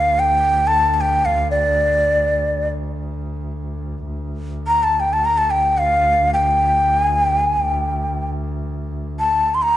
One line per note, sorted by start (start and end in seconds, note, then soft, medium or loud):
0.00 4.05 D2 medium
0.00 0.21 F5 medium
0.19 0.69 G5 medium
0.67 0.94 A5 loud
0.94 1.02 A5 medium
1.01 1.27 G5 medium
1.25 1.50 F5 medium
1.51 2.70 D5 medium
4.06 9.77 D2 medium
4.67 4.85 A#5 medium
4.83 5.01 A5 medium
5.00 5.15 G5 medium
5.13 5.27 A5 medium
5.25 5.39 A#5 medium
5.38 5.52 A5 medium
5.50 5.80 G5 medium
5.78 6.31 F5 medium
6.33 7.02 G5 medium
7.02 7.21 G#5 medium
7.21 7.42 G5 medium
7.42 7.60 G#5 medium
7.60 8.29 G5 medium
9.19 9.56 A5 medium
9.54 9.64 C6 medium
9.62 9.77 A#5 medium